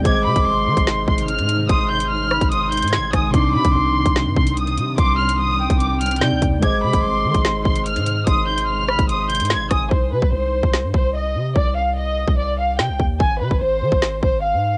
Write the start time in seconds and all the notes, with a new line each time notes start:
Already playing: C3
0.02 G#1 D#3 G#3 D#4 G#4 D6 G#6, kick, closed hi-hat
0.06 C5 D#5
0.25 C3 B5
0.36 G#1, kick, closed hi-hat
0.46 G#1 C6
0.67 D#3
0.77 G#1, kick, closed hi-hat
0.87 snare
1.08 G#1 C6, kick
1.18 closed hi-hat
1.28 F6, closed hi-hat
1.39 G#2, closed hi-hat
1.49 closed hi-hat
1.69 G#1 C6 D#6, kick, closed hi-hat
1.90 G6
2.00 closed hi-hat
2.10 F6
2.31 B5, cross-stick
2.41 G#1, kick, closed hi-hat
2.52 C6 D#6, closed hi-hat
2.72 G6, closed hi-hat
2.77 closed hi-hat
2.82 G#2, closed hi-hat
2.88 closed hi-hat
2.93 G#6, snare
2.98 G#1
3.13 G#1 G#5 D#6, kick, cross-stick, closed hi-hat
3.31 C2 C3 G3 C4 C6 D6, kick, closed hi-hat
3.35 D4 D#4
3.54 C3 B5
3.65 C2, kick, closed hi-hat
3.75 C2 C6
4.06 C2, kick, closed hi-hat
4.16 snare
4.26 G2
4.36 C2 C6, kick
4.47 closed hi-hat
4.57 D#6, closed hi-hat
4.67 closed hi-hat
4.78 C3, closed hi-hat
4.98 C2 C6 D6, kick, closed hi-hat
5.19 F6
5.29 closed hi-hat
5.39 D#6
5.60 G5
5.70 C2, kick, closed hi-hat
5.80 D6, closed hi-hat
6.01 F6, closed hi-hat
6.06 closed hi-hat
6.11 closed hi-hat
6.16 C3, closed hi-hat
6.21 C3 C4 D#4 D5 G6, snare
6.32 C2
6.42 D#2, kick, closed hi-hat
6.59 G#1 C3 G#3 D#4 G#4 D6 G#6, kick, closed hi-hat
6.64 C5 D#5
6.83 C3 B5
6.93 G#1, kick, closed hi-hat
7.04 G#1 C6
7.24 D#3
7.34 G#1, kick, closed hi-hat
7.45 snare
7.65 G#1 C6, kick
7.76 closed hi-hat
7.86 F6, closed hi-hat
7.96 G#2, closed hi-hat
8.06 closed hi-hat
8.27 G#1 C6 D#6, kick, closed hi-hat
8.48 G6
8.58 closed hi-hat
8.68 F6
8.89 B5, cross-stick
8.99 G#1, kick, closed hi-hat
9.09 C6 D#6, closed hi-hat
9.30 G6, closed hi-hat
9.35 closed hi-hat
9.40 G#2, closed hi-hat
9.45 closed hi-hat
9.50 G#6, snare
9.55 G#1
9.71 G#1 G#5 D#6, kick, cross-stick, closed hi-hat
9.91 C2 C5, kick
10.12 C3 B4
10.22 C2, kick
10.32 C2 C5
10.63 C2, kick
10.73 snare
10.84 G2
10.94 C2 C5, kick
11.15 D#5
11.35 C3
11.56 C2 D5, kick
11.76 F5
11.97 D#5
12.28 C2, kick
12.38 D5
12.59 F5
12.79 C3 G5, snare
12.89 C2
13.00 D#2, kick
13.20 G#1 G#5, kick
13.40 C3 B4
13.51 G#1, kick
13.61 G#1 C5
13.82 D#3
13.92 G#1, kick
14.02 snare
14.23 G#1 C5, kick
14.44 F5
14.54 G#2